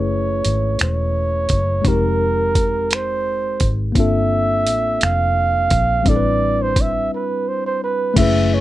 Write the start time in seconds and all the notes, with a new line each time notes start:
Already playing: F#1 A3 C#4 E4 G#4 B4 C#5
0.45 G#1, closed hi-hat
0.79 E1 C#5, finger snap, closed hi-hat
1.49 F#1, kick, closed hi-hat
1.82 F1 G#3 C4 D#4, kick, closed hi-hat
1.88 G4 A#4
2.55 kick, closed hi-hat
2.91 C5, finger snap, closed hi-hat
3.60 G#1, kick, closed hi-hat
3.92 G1 A#3 C4, kick, closed hi-hat
3.96 D4 F4 A4 E5
4.67 A1, closed hi-hat
5.01 F1 F5, finger snap, closed hi-hat
5.70 A#1, kick, closed hi-hat
6.02 A1 G3 C4 D4, kick, closed hi-hat
6.08 E4 A4 D5
6.16 B4
6.62 C5
6.76 kick, closed hi-hat
6.81 E5
7.14 B4
7.48 C5
7.66 C5
7.84 B4
8.14 F#1 A3 C#4 E4 B4 E5 F#5 G#5, kick, closed hi-hat, crash
8.20 G#4 B4
8.54 C#5